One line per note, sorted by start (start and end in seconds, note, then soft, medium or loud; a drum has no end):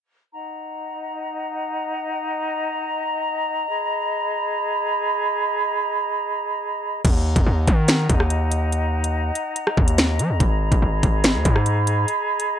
0.33 3.66 D#4 medium
0.33 7.01 D#5 medium
0.33 3.66 F#5 medium
0.33 7.01 A#5 medium
3.69 7.01 G#4 medium
3.69 7.01 B5 medium
7.05 7.35 D#2 loud
7.05 10.15 D#4 medium
7.05 12.59 D#5 medium
7.05 10.14 F#5 medium
7.05 12.59 A#5 medium
7.05 kick loud
7.05 closed hi-hat medium
7.05 crash loud
7.36 7.46 D#2 loud
7.36 kick loud
7.36 closed hi-hat medium
7.47 7.67 D#2 loud
7.67 8.08 D#3 loud
7.67 kick loud
7.67 closed hi-hat medium
7.88 finger snap medium
7.88 snare loud
7.88 closed hi-hat medium
8.09 9.31 D#2 loud
8.09 kick medium
8.09 closed hi-hat medium
8.20 cross-stick medium
8.30 closed hi-hat medium
8.52 closed hi-hat medium
8.72 closed hi-hat medium
9.04 closed hi-hat medium
9.35 closed hi-hat medium
9.56 closed hi-hat medium
9.67 cross-stick medium
9.77 10.21 D#2 loud
9.77 kick medium
9.88 closed hi-hat medium
9.98 finger snap medium
9.98 snare loud
9.98 closed hi-hat medium
10.19 10.31 F#3 loud
10.19 closed hi-hat medium
10.30 10.40 D#2 loud
10.40 10.70 G#1 loud
10.40 12.59 G#4 medium
10.40 12.59 B5 medium
10.40 kick loud
10.40 closed hi-hat medium
10.72 10.82 G#1 loud
10.72 kick loud
10.72 closed hi-hat medium
10.82 11.02 G#1 loud
11.03 11.36 G#1 loud
11.03 kick loud
11.03 closed hi-hat medium
11.24 finger snap medium
11.24 snare loud
11.24 closed hi-hat medium
11.35 11.45 D#2 loud
11.45 12.06 G#2 loud
11.45 kick medium
11.45 closed hi-hat medium
11.56 cross-stick medium
11.66 closed hi-hat medium
11.87 closed hi-hat medium
12.08 closed hi-hat medium
12.40 closed hi-hat medium